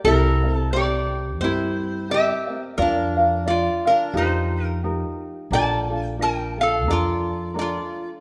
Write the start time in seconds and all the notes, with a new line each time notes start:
0.04 C2 C4 E4 G4 A#4 E5
0.44 C4 A#4 E5
0.55 A4
0.73 C4 G4 A#4 D5 E5
1.41 G2 C4 E4 G4 A#4 C5 E5
2.10 C4 G4 A#4 E5
2.14 G4
2.47 C4 A#4 E5
2.78 F2 F4 A#4 D5 F5
2.82 D4
3.17 F4 A#4 F5
3.46 F4 A#4 D5 F5
3.50 F4
3.86 D4 F4 A#4 F5
4.14 F2 D#4 F4 G4 A#4 C5
4.18 D#4
4.64 A#4
4.83 D#4 F4 G4 A#4
5.51 A#1 D4 F4 A4 A#4 A5
5.55 D5
5.90 D4 F4 A4
6.05 G5
6.19 D4 F4 A#4 G5
6.24 A#4
6.58 D4 F4 A4 F5
6.63 A4
6.88 F2 D4 F4 A4 A#4 D5
6.93 F4
7.54 D4 F4 A4 A#4
7.59 F4 D5